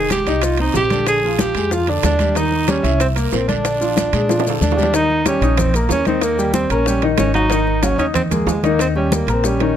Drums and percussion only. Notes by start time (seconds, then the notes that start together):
0.10 high bongo, high conga, high timbale, low timbale, short guiro, maracas
0.26 high bongo, high conga, high timbale, short guiro, maracas
0.42 high bongo, high conga, high timbale, long guiro, maracas
0.57 high bongo, high conga, high timbale
0.74 high bongo, low bongo, high conga, low timbale, short guiro, maracas
0.90 high conga, high timbale, short guiro, maracas
1.06 high bongo, high timbale, long guiro, maracas
1.22 high bongo, high conga
1.39 high bongo, high conga, high timbale, low timbale, short guiro, maracas
1.55 high bongo, high timbale, short guiro, maracas
1.71 high bongo, high conga, long guiro, maracas
1.87 high bongo, high conga, high timbale
2.03 high bongo, low bongo, high conga, high timbale, low timbale, short guiro, maracas
2.19 high conga, high timbale, short guiro, maracas
2.35 high bongo, high conga, high timbale, long guiro, maracas
2.52 high bongo, high conga
2.68 high bongo, high conga, high timbale, low timbale, short guiro, maracas
2.84 high bongo, high conga, high timbale, short guiro, maracas
3.00 high bongo, high conga, high timbale, long guiro, maracas
3.16 high bongo, high conga, high timbale, maracas
3.32 high bongo, low bongo, high conga, low timbale, short guiro, maracas
3.49 high conga, high timbale, short guiro, maracas
3.65 high bongo, high conga, high timbale, long guiro, maracas
3.81 high bongo, high conga, maracas
3.97 high bongo, high conga, high timbale, low timbale, short guiro, maracas
4.13 high bongo, high timbale, short guiro, maracas
4.29 high bongo, high conga, high timbale, long guiro, maracas
4.40 high bongo, high timbale
4.46 high conga, low timbale, maracas
4.61 low bongo, high conga, short guiro, maracas
4.72 low bongo, low timbale
4.78 high conga, short guiro, maracas
4.83 low bongo, low timbale
4.94 high bongo, high conga, high timbale, maracas
5.10 high bongo, high conga
5.26 high bongo, high conga, high timbale, low timbale, maracas
5.42 high bongo, high conga, high timbale, maracas
5.57 high bongo, high conga, low conga, high timbale, maracas
5.74 high bongo, high conga, high timbale, maracas
5.89 high bongo, low bongo, high conga, low timbale, maracas
6.05 high conga, high timbale, maracas
6.21 high bongo, high conga, high timbale, maracas
6.38 high bongo, high conga, maracas
6.54 high bongo, high conga, high timbale, low timbale, maracas
6.70 high bongo, high timbale, maracas
6.86 high bongo, high conga, maracas
7.02 high bongo, high conga, high timbale
7.18 high bongo, low bongo, high conga, high timbale, low timbale, maracas
7.34 high timbale, maracas
7.50 high bongo, high conga, high timbale, maracas
7.67 high bongo, high conga
7.83 high bongo, high conga, high timbale, low timbale, maracas
7.98 high bongo, high conga, high timbale, maracas
8.14 high bongo, high conga, low conga, high timbale, maracas
8.31 high bongo, high conga, low conga, high timbale, maracas
8.47 high bongo, low bongo, high conga, low timbale, maracas
8.64 high conga, high timbale, maracas
8.79 high bongo, high conga, high timbale, maracas
8.95 high bongo, high conga
9.12 high bongo, high conga, high timbale, low timbale, maracas
9.28 high bongo, high timbale, maracas
9.44 high bongo, high conga, maracas
9.60 high bongo, high conga, high timbale